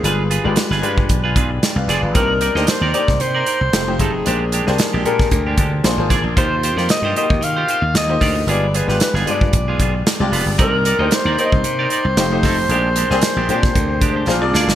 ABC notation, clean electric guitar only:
X:1
M:4/4
L:1/16
Q:"Swing 16ths" 1/4=114
K:Bbmix
V:1 name="Clean electric guitar"
[FA=B] z [FAB] [FAd] z [FAB] [FAB] z2 [FAB] [FAB] z3 [FAd] z | [EBd] z [EBd] [EBe] z [EBd] [EBd] z2 [EBd] [EBd] z3 [=A,E=A] z | [A,DG] z [A,DG] [A,DA] z [A,DG] [A,DG] z2 [A,DG] [A,DG] z3 [DAd] z | [FGc] z [FGc] [FGd] z [FGc] [FGc] z2 [FGc] [FGc] z3 [FGd] z |
[=B,FA] z [B,FA] [B,F=B] z [B,FA] [B,FA] z2 [B,FA] [B,FA] z3 [B,FB] z | [EBd] z [EBd] [EBe] z [EBd] [EBd] z2 [EBd] [EBd] z3 [=A,E=A] z | [A,DG] z [A,DG] [A,DA] z [A,DG] [A,DG] z3 [A,DG] [A,DG] z2 [DAd] z |]